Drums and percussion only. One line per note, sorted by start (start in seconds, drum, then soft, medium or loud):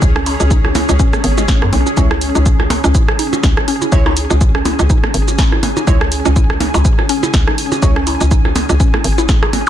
0.02 kick loud
0.02 shaker medium
0.16 cross-stick medium
0.16 percussion blips medium
0.26 open hi-hat medium
0.26 percussion blips medium
0.26 shaker soft
0.40 percussion blips soft
0.40 shaker soft
0.51 kick loud
0.51 shaker medium
0.65 cross-stick soft
0.65 percussion blips medium
0.75 open hi-hat medium
0.75 percussion blips loud
0.75 shaker soft
0.89 percussion blips medium
0.89 shaker soft
0.99 kick loud
0.99 shaker medium
1.13 cross-stick medium
1.13 percussion blips soft
1.13 percussion blips medium
1.13 shaker soft
1.24 open hi-hat medium
1.38 percussion blips medium
1.38 shaker soft
1.48 kick loud
1.48 snare loud
1.48 shaker medium
1.62 cross-stick medium
1.62 percussion blips medium
1.73 open hi-hat medium
1.73 percussion blips medium
1.86 percussion blips soft
1.86 shaker soft
1.97 kick loud
1.97 shaker medium
2.11 cross-stick medium
2.11 percussion blips medium
2.21 open hi-hat medium
2.21 shaker soft
2.35 percussion blips soft
2.35 shaker soft
2.46 kick loud
2.46 shaker medium
2.60 cross-stick soft
2.60 percussion blips medium
2.70 open hi-hat medium
2.70 percussion blips medium
2.84 percussion blips medium
2.84 shaker soft
2.95 kick loud
2.95 shaker medium
3.08 cross-stick medium
3.08 percussion blips soft
3.19 open hi-hat medium
3.33 percussion blips medium
3.33 shaker soft
3.43 kick loud
3.43 snare loud
3.43 shaker medium
3.57 cross-stick medium
3.57 percussion blips medium
3.68 open hi-hat medium
3.82 percussion blips soft
3.82 shaker soft
3.92 kick loud
3.92 shaker medium
4.06 cross-stick soft
4.06 percussion blips medium
4.17 open hi-hat loud
4.17 shaker soft
4.30 percussion blips medium
4.30 shaker soft
4.41 kick loud
4.41 shaker medium
4.55 cross-stick medium
4.55 percussion blips soft
4.65 open hi-hat loud
4.65 percussion blips medium
4.65 shaker soft
4.79 percussion blips medium
4.79 shaker soft
4.90 kick loud
4.90 shaker medium
5.04 cross-stick medium
5.04 percussion blips medium
5.14 open hi-hat loud
5.28 percussion blips soft
5.28 shaker soft
5.39 kick loud
5.39 snare loud
5.39 percussion blips medium
5.39 shaker medium
5.52 cross-stick soft
5.52 percussion blips medium
5.63 open hi-hat loud
5.63 percussion blips medium
5.77 percussion blips medium
5.77 shaker soft
5.87 kick loud
5.87 shaker medium
6.01 cross-stick medium
6.01 percussion blips soft
6.12 open hi-hat loud
6.12 shaker soft
6.26 percussion blips medium
6.26 shaker soft
6.36 kick loud
6.36 shaker medium
6.50 cross-stick medium
6.50 percussion blips medium
6.60 open hi-hat loud
6.60 percussion blips loud
6.74 percussion blips medium
6.74 percussion blips soft
6.74 shaker soft
6.85 kick loud
6.85 shaker medium
6.99 cross-stick soft
6.99 percussion blips medium
7.09 open hi-hat loud
7.23 percussion blips medium
7.23 shaker soft
7.34 kick loud
7.34 snare loud
7.34 shaker soft
7.47 cross-stick medium
7.47 percussion blips soft
7.58 open hi-hat loud
7.72 percussion blips medium
7.72 shaker soft
7.82 kick loud
7.82 shaker medium
7.96 cross-stick medium
7.96 percussion blips medium
8.07 open hi-hat loud
8.07 percussion blips medium
8.07 shaker soft
8.21 percussion blips soft
8.21 shaker soft
8.31 kick loud
8.31 shaker medium
8.45 cross-stick soft
8.45 percussion blips medium
8.56 open hi-hat loud
8.56 percussion blips medium
8.56 shaker soft
8.69 percussion blips medium
8.69 shaker soft
8.80 kick loud
8.80 shaker soft
8.94 cross-stick medium
8.94 percussion blips soft
8.94 percussion blips medium
9.04 open hi-hat loud
9.18 percussion blips medium
9.18 shaker soft
9.29 kick loud
9.29 snare loud
9.29 shaker soft
9.43 cross-stick medium
9.43 percussion blips medium
9.53 open hi-hat loud
9.53 percussion blips medium